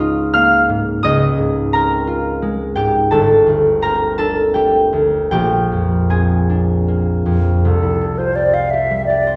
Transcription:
0.00 1.03 C#2 medium
0.00 0.68 G#2 soft
0.00 2.17 G#3 medium
0.00 3.13 D#4 medium
0.00 2.06 F4 medium
0.00 1.07 A#4 medium
0.00 1.07 C#5 medium
0.00 1.03 D#5 medium
0.00 1.06 A#5 medium
0.00 1.06 C#6 loud
0.00 1.02 D#6 loud
0.34 1.06 A#3 medium
0.34 4.25 F5 medium
0.34 4.24 F6 loud
0.69 1.07 G#2 medium
1.03 3.14 C#2 medium
1.03 3.14 D#5 medium
1.03 3.13 D#6 loud
1.38 2.75 G#2 soft
1.73 3.81 C4 medium
1.73 3.15 A#4 medium
1.73 3.14 A#5 medium
2.07 5.97 F4 medium
2.42 3.14 G#3 medium
2.76 3.14 G#2 medium
2.76 4.54 G4 medium
2.76 3.36 G5 loud
3.11 5.35 G1 medium
3.11 4.17 A4 medium
3.11 4.17 A5 loud
3.47 4.91 D2 soft
3.82 6.09 C4 medium
3.82 7.66 A#4 medium
3.82 4.43 A#5 loud
4.18 6.48 D4 medium
4.18 5.35 A4 medium
4.18 5.35 A5 loud
4.54 5.35 A3 medium
4.54 5.31 G4 medium
4.54 5.30 G5 medium
4.93 5.35 D2 soft
5.31 7.65 A#1 medium
5.31 8.00 G4 medium
5.31 9.21 G5 loud
5.72 7.24 F2 soft
6.10 9.36 C4 medium
6.10 7.66 G#4 medium
6.10 7.65 G#5 medium
6.50 7.66 D4 soft
6.88 7.66 A#3 medium
7.26 7.66 F2 medium
7.63 9.36 C2 medium
7.63 8.20 A4 medium
7.82 9.36 E4 soft
8.01 8.36 G4 soft
8.18 8.49 F4 soft
8.18 8.37 C5 medium
8.36 8.72 G4 soft
8.36 8.55 D5 medium
8.53 9.26 C5 soft
8.53 8.72 F5 medium
8.70 9.08 G4 soft
8.70 9.06 E5 medium
8.91 9.36 G3 soft
9.06 9.36 G4 medium
9.06 9.36 D5 medium
9.27 9.36 C5 soft

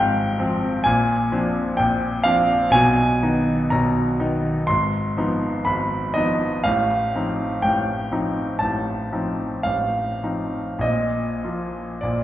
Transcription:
0.00 0.88 G#1 medium
0.00 0.88 G#2 medium
0.00 0.39 F3 soft
0.00 0.40 C4 medium
0.00 0.88 F5 loud
0.00 0.84 G5 loud
0.39 0.81 F3 medium
0.39 0.82 C4 medium
0.84 1.30 A#1 medium
0.84 1.31 A#2 medium
0.84 1.78 G#5 loud
1.32 1.75 F3 medium
1.32 1.75 C4 medium
1.32 1.75 D4 medium
1.77 2.24 A#1 medium
1.77 2.24 A#2 medium
1.77 2.25 G5 medium
2.24 2.69 F3 medium
2.24 2.69 C4 medium
2.24 2.69 D4 medium
2.24 2.72 F5 loud
2.70 3.19 B1 medium
2.70 3.21 B2 medium
2.70 3.71 G#5 loud
3.22 3.67 D#3 soft
3.22 3.68 B3 medium
3.22 3.68 D#4 medium
3.70 4.18 B1 medium
3.70 4.19 B2 medium
3.70 4.68 A#5 medium
4.20 4.64 D#3 soft
4.20 4.64 B3 medium
4.20 4.64 D#4 medium
4.67 5.16 G#1 medium
4.67 5.16 G#2 medium
4.67 5.66 C6 loud
5.17 5.62 F3 medium
5.17 5.63 B3 soft
5.17 5.63 D#4 medium
5.65 6.14 G#1 medium
5.65 6.14 G#2 medium
5.65 6.15 B5 loud
6.14 6.61 F3 soft
6.14 6.61 B3 medium
6.14 6.61 D#4 medium
6.14 6.64 D#5 loud
6.64 7.13 A1 medium
6.64 7.13 A2 medium
6.64 7.63 F5 medium
7.15 7.60 F3 soft
7.15 7.60 C4 soft
7.15 7.60 D#4 soft
7.62 8.10 A1 medium
7.62 8.10 A2 medium
7.62 8.60 G5 medium
8.12 8.57 F3 soft
8.12 8.57 C4 soft
8.12 8.57 D#4 medium
8.59 9.10 A1 medium
8.59 9.10 A2 soft
8.59 9.65 A5 medium
9.12 9.62 F3 soft
9.12 9.62 C4 soft
9.12 9.62 D#4 soft
9.63 10.21 A1 soft
9.63 10.21 A2 soft
9.63 10.82 F5 medium
10.23 10.80 F3 soft
10.23 10.80 C4 soft
10.23 10.80 D#4 soft
10.79 11.40 A#1 soft
10.79 12.02 D#5 medium
10.83 11.42 A#2 medium
11.44 11.99 F3 soft
11.44 11.99 A#3 soft
11.44 11.99 F4 soft
12.01 12.24 A#1 soft
12.01 12.24 A#2 soft
12.01 12.24 D5 medium

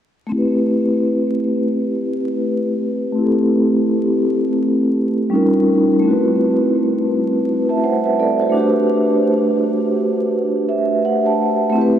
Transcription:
0.26 3.11 A3 medium
0.26 3.12 C4 medium
0.32 3.14 E4 medium
0.32 3.15 G4 medium
0.38 3.17 B4 medium
3.12 5.26 A3 medium
3.12 5.27 C4 medium
3.18 5.29 E4 medium
3.18 5.30 G4 medium
3.24 5.31 A4 medium
5.30 6.03 G3 medium
5.30 6.03 C#4 medium
5.30 6.04 D#4 medium
5.34 6.05 F4 medium
5.34 6.05 A#4 medium
5.99 8.48 A3 medium
5.99 8.49 C4 medium
6.05 8.50 E4 medium
6.05 7.46 F#4 medium
6.11 7.47 B4 medium
7.69 7.83 E5 soft
7.69 7.82 A5 medium
7.84 8.04 C5 medium
7.84 8.04 F#5 medium
8.05 8.18 B4 medium
8.05 8.18 E5 medium
8.19 8.40 A4 medium
8.19 8.40 D5 medium
8.41 8.53 F#4 medium
8.41 8.74 C5 medium
8.49 11.33 A3 medium
8.49 11.35 D4 medium
8.55 11.36 F#4 medium
8.55 11.37 G4 medium
8.60 11.39 B4 medium
10.69 11.02 E5 medium
11.05 11.25 F#5 medium
11.26 11.72 A5 medium
11.70 11.99 A3 medium
11.70 11.99 C4 medium
11.75 11.99 E4 medium
11.75 11.99 G4 medium
11.81 11.99 B4 medium

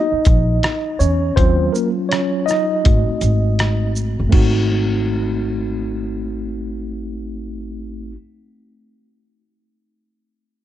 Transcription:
0.00 0.96 D#4 medium
0.00 1.03 D#5 loud
0.12 muted upright bass stroke soft
0.25 0.57 A#1 medium
0.25 kick medium
0.25 closed hi-hat soft
0.25 shaker soft
0.63 cross-stick loud
0.63 closed hi-hat medium
0.99 1.30 E2 medium
0.99 1.35 C#4 medium
0.99 1.38 C#5 medium
0.99 shaker medium
1.36 1.68 D#2 loud
1.36 2.81 F#3 medium
1.36 1.72 C4 medium
1.36 2.10 C#4 medium
1.36 2.82 F4 medium
1.36 1.75 C5 loud
1.36 kick medium
1.36 closed hi-hat medium
1.73 1.91 A#3 medium
1.73 1.90 A#4 medium
1.73 shaker soft
2.09 2.45 C#4 medium
2.09 2.48 C#5 medium
2.09 cross-stick medium
2.09 closed hi-hat medium
2.46 3.92 D#4 medium
2.46 3.91 D#5 medium
2.46 shaker soft
2.51 cross-stick soft
2.84 3.05 G#1 medium
2.84 4.28 A3 medium
2.84 4.29 C4 soft
2.84 4.29 F#4 medium
2.84 kick medium
2.84 closed hi-hat medium
3.08 muted upright bass stroke soft
3.21 4.15 G#1 medium
3.21 closed hi-hat soft
3.21 shaker soft
3.59 cross-stick medium
3.59 closed hi-hat medium
3.96 shaker soft
4.19 4.31 F#1 medium
4.29 8.14 G#1 medium
4.29 8.11 A3 medium
4.29 8.13 C4 medium
4.29 8.14 D#4 medium
4.29 kick medium
4.29 crash medium
4.34 8.16 F#4 medium

